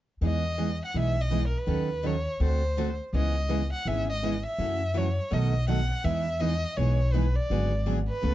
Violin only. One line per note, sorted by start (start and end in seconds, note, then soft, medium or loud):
0.27 0.79 D#5 medium
0.85 0.96 F#5 medium
0.99 1.23 E5 medium
1.21 1.47 D#5 medium
1.47 1.59 A#4 soft
1.57 2.08 B4 medium
2.06 2.42 C#5 medium
2.44 2.97 C5 medium
3.15 3.69 D#5 medium
3.73 3.89 F#5 medium
3.87 4.09 E5 medium
4.09 4.43 D#5 medium
4.46 4.99 E5 medium
4.98 5.34 C#5 medium
5.33 5.69 D#5 medium
5.69 6.06 F#5 medium
6.04 6.42 E5 medium
6.41 6.78 D#5 medium
6.77 7.14 C#5 medium
7.12 7.37 B4 medium
7.35 7.86 D5 medium
8.09 8.34 B4 medium